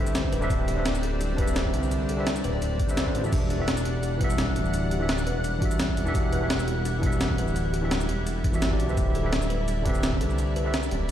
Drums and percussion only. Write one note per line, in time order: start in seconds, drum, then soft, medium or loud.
0.07 shaker medium
0.15 snare loud
0.15 closed hi-hat medium
0.15 shaker soft
0.24 kick medium
0.33 closed hi-hat medium
0.33 shaker soft
0.42 shaker soft
0.50 kick loud
0.50 closed hi-hat medium
0.50 shaker medium
0.68 closed hi-hat medium
0.68 shaker soft
0.86 snare loud
0.86 closed hi-hat medium
0.86 shaker medium
0.95 shaker medium
1.03 closed hi-hat medium
1.21 closed hi-hat medium
1.21 shaker medium
1.38 kick medium
1.38 closed hi-hat medium
1.48 shaker medium
1.56 snare loud
1.56 closed hi-hat medium
1.56 shaker medium
1.65 kick medium
1.74 closed hi-hat medium
1.74 shaker soft
1.83 shaker soft
1.91 closed hi-hat medium
1.91 shaker medium
2.09 closed hi-hat medium
2.09 shaker soft
2.27 snare loud
2.27 closed hi-hat medium
2.27 shaker medium
2.36 shaker medium
2.44 closed hi-hat medium
2.44 shaker soft
2.62 closed hi-hat medium
2.62 shaker medium
2.80 kick loud
2.80 closed hi-hat medium
2.89 shaker medium
2.97 snare loud
2.97 closed hi-hat medium
2.97 shaker medium
3.07 kick medium
3.15 closed hi-hat medium
3.15 shaker soft
3.24 shaker soft
3.33 kick loud
3.33 closed hi-hat medium
3.33 crash medium
3.33 shaker medium
3.50 closed hi-hat medium
3.50 shaker soft
3.68 snare loud
3.68 closed hi-hat medium
3.68 shaker medium
3.77 shaker medium
3.85 closed hi-hat loud
4.03 closed hi-hat medium
4.03 shaker medium
4.21 kick loud
4.21 closed hi-hat loud
4.30 shaker medium
4.38 snare loud
4.38 closed hi-hat medium
4.38 shaker soft
4.48 kick medium
4.56 closed hi-hat loud
4.56 shaker soft
4.65 shaker soft
4.74 closed hi-hat medium
4.74 shaker medium
4.91 closed hi-hat loud
4.91 shaker soft
5.09 snare loud
5.09 closed hi-hat medium
5.09 shaker soft
5.18 shaker medium
5.27 closed hi-hat loud
5.44 closed hi-hat medium
5.44 shaker medium
5.62 kick loud
5.62 closed hi-hat loud
5.71 shaker medium
5.79 snare loud
5.79 closed hi-hat medium
5.79 shaker medium
5.89 kick medium
5.97 closed hi-hat medium
5.97 shaker soft
6.07 shaker soft
6.15 kick loud
6.15 closed hi-hat medium
6.15 shaker soft
6.33 closed hi-hat loud
6.33 shaker soft
6.50 snare loud
6.50 closed hi-hat medium
6.50 shaker soft
6.59 shaker medium
6.68 closed hi-hat medium
6.85 closed hi-hat medium
6.85 shaker soft
7.03 kick loud
7.03 closed hi-hat loud
7.12 shaker medium
7.21 snare loud
7.21 closed hi-hat medium
7.21 shaker soft
7.30 kick medium
7.38 closed hi-hat medium
7.38 shaker soft
7.48 shaker soft
7.56 closed hi-hat medium
7.56 shaker soft
7.74 closed hi-hat medium
7.74 shaker soft
7.91 snare loud
7.91 closed hi-hat medium
7.91 shaker soft
8.01 shaker medium
8.09 closed hi-hat medium
8.27 closed hi-hat medium
8.27 shaker soft
8.44 kick loud
8.44 closed hi-hat medium
8.54 shaker medium
8.62 snare loud
8.62 closed hi-hat medium
8.62 shaker soft
8.71 kick medium
8.80 closed hi-hat medium
8.80 shaker soft
8.89 shaker soft
8.97 kick loud
8.97 closed hi-hat medium
8.97 shaker soft
9.15 closed hi-hat medium
9.15 shaker soft
9.33 snare loud
9.33 closed hi-hat medium
9.33 shaker soft
9.42 shaker medium
9.50 closed hi-hat medium
9.68 closed hi-hat medium
9.68 shaker soft
9.86 kick loud
9.86 closed hi-hat medium
9.95 shaker medium
10.03 snare loud
10.03 closed hi-hat medium
10.03 shaker soft
10.13 kick medium
10.21 closed hi-hat medium
10.21 shaker soft
10.30 shaker soft
10.39 closed hi-hat medium
10.39 shaker soft
10.56 closed hi-hat medium
10.56 shaker soft
10.74 snare loud
10.74 closed hi-hat medium
10.74 shaker soft
10.83 shaker medium
10.91 closed hi-hat medium